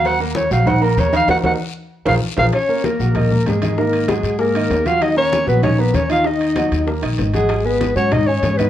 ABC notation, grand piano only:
X:1
M:4/4
L:1/8
Q:1/4=193
K:Ebm
V:1 name="Grand piano"
[G,Gg] [B,Bb]2 [G,Gg] [E,Ee] [B,Bb]2 [E,Ee] | [EGB] [EGB] z3 [FAB] z [FAB] | z [B,Bb]2 [G,Gg] [E,Ee] [B,Bb]2 [E,Ee] | [E,Ee]2 [G,Gg]2 [A,Aa] [E,Ee]2 [G,Gg]- |
[G,Gg] [B,Bb]2 [G,Gg] [E,Ee] [B,Bb]2 [E,Ee] | [E,Ee]2 [G,Gg]2 [B,Bb] [E,Ee]2 [G,Gg]- | [G,Gg] [A,Aa]2 [G,Gg] [E,Ee] [A,Aa]2 [E,Ee] |]